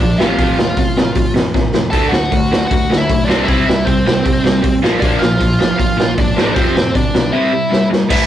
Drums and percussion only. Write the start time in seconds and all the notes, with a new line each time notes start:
0.20 snare
0.38 kick, open hi-hat
0.59 snare
0.77 kick, open hi-hat
0.98 snare
1.15 kick, open hi-hat
1.36 snare
1.54 kick, snare
1.74 snare
1.93 kick, open hi-hat
2.13 snare
2.32 kick, open hi-hat
2.53 snare
2.71 kick, open hi-hat
2.92 snare
3.10 kick, open hi-hat
3.30 snare
3.48 kick, open hi-hat
3.70 snare
3.87 kick, open hi-hat
4.08 snare
4.26 kick, open hi-hat
4.46 snare
4.64 kick, open hi-hat
4.84 snare
5.02 kick, open hi-hat
5.22 snare
5.40 kick, open hi-hat
5.61 snare
5.80 kick, open hi-hat
6.00 snare
6.18 kick, open hi-hat
6.38 snare
6.56 kick, open hi-hat
6.77 snare
6.95 kick, open hi-hat
7.15 snare
7.73 snare
7.93 snare
8.10 kick, crash